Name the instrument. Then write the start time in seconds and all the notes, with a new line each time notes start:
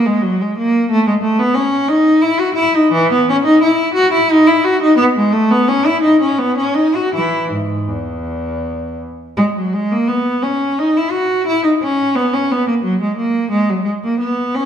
cello
0.06 G#3
0.22 F#3
0.40 G#3
0.57 A#3
0.91 A3
1.07 G#3
1.22 A3
1.39 B3
1.54 C#4
1.88 D#4
2.21 E4
2.39 F#4
2.54 E4
2.75 D#4
2.92 E3
3.13 B3
3.29 C#4
3.45 D#4
3.62 E4
3.94 F#4
4.12 E4
4.31 D#4
4.47 E4
4.64 F#4
4.82 D#4
4.96 B3
5.17 G#3
5.32 A3
5.51 B3
5.68 C#4
5.86 E4
6.02 D#4
6.21 C#4
6.38 B3
6.57 C#4
6.74 D#4
6.95 F#4
7.14 E3 E4
7.51 G#2
7.88 E2
9.37 G#3
9.57 F#3
9.73 G#3
9.92 A#3
10.08 B3
10.43 C#4
10.78 D#4
10.97 E4
11.11 F#4
11.47 E4
11.64 D#4
11.83 C#4
12.15 B3
12.33 C#4
12.51 B3
12.67 A#3
12.83 F#3
13.01 G#3
13.17 A#3
13.51 G#3
13.69 F#3
13.84 G#3
14.04 A#3
14.20 B3
14.55 C#4